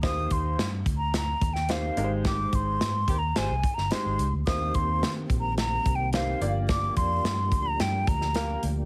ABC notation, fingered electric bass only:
X:1
M:4/4
L:1/16
Q:1/4=108
K:Eb
V:1 name="Fingered electric bass" clef=bass
E,,2 E,,2 G,,2 D,,4 E,,4 A,,,2- | A,,,2 A,,,2 A,,2 E,,2 A,,, C,, z G,,, z A,,, _D,, =D,, | E,,2 E,,2 E,2 B,,,4 C,,4 G,,,2- | G,,,2 F,,2 G,,2 D,,2 G,,2 D,,4 D,,2 |]